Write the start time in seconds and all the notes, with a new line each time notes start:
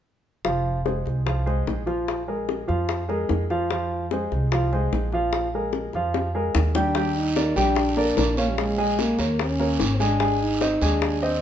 0.45 F1 F3 F4 F5, high bongo
0.85 G#3 G#4 C5, high bongo
1.05 C2, high bongo
1.26 F3 F4 F5, high bongo
1.46 G#3 G#4 C5, high bongo
1.67 A#1, high bongo, low bongo
1.86 F3 F4 F5, high bongo
2.08 high bongo
2.28 G#3 G#4 A#4
2.49 high bongo
2.67 F2 F3 F4 F5, high bongo
2.89 high bongo
3.08 G#3 G#4 A#4, high bongo
3.29 F2, high bongo, low bongo
3.50 F3 F4 F5, high bongo
3.70 F3 F4 F5, high bongo
4.11 G#3 G#4 C5, high bongo
4.32 C2, high bongo
4.52 F3 F4 F5, high bongo
4.73 G#3 G#4 C5, high bongo
4.93 A#1, high bongo, low bongo
5.12 F3 F4 F5, high bongo
5.33 high bongo
5.54 G#3 G#4 A#4
5.73 high bongo
5.93 F2 F3 F4 F5, high bongo
6.14 high bongo
6.34 G#3 G#4 A#4
6.55 D#2, low bongo
6.75 G3 D4 G4 G5, low bongo
6.95 G3 G4 G5, high bongo, long guiro
7.18 D#4
7.35 A#3 A#4 D5, high bongo, short guiro
7.56 A#1 G3 D4 G4 G5, high bongo, short guiro
7.75 high bongo, long guiro
7.97 A#3 A#4 D5, high bongo
8.17 A#1 A#3 A#4 D5, high bongo, low bongo, short guiro
8.37 A#3 C#4 C#5 F5, high bongo, short guiro
8.51 G3
8.58 G#3, high bongo, long guiro
8.78 G#3 G#4 G#5
8.99 A#3, high bongo, short guiro
9.18 D#2 A#3 A#4 C#5, high bongo, short guiro
9.39 C#4, high bongo, long guiro
9.59 A#3 A#4 C#5, high bongo
9.79 G#1, high bongo, low bongo, short guiro
9.95 C4
10.00 G#3 D4 G#4 G#5, high bongo, short guiro
10.20 G#3 G#4 G#5, high bongo, long guiro
10.42 D#4
10.61 C4 C5 D#5, high bongo, short guiro
10.81 D#2 G#3 D4 G#4 G#5, high bongo, short guiro
11.02 high bongo, long guiro
11.22 C4 C5 D#5, high bongo